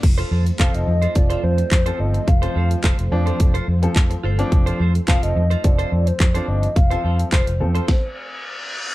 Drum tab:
CC |x---------------|----------------|----------------|----------------|
HH |xx-xxx-xxx-xxx-x|xx-xxx-xxx-xxx-x|xx-xxx-xxx-xxx-x|xx-xxx-x--------|
CP |----x-------x---|----x-------x---|----x-------x---|----x-----------|
SD |----------------|----------------|----------------|--------o-------|
BD |o---o---o---o---|o---o---o---o---|o---o---o---o---|o---o---o-------|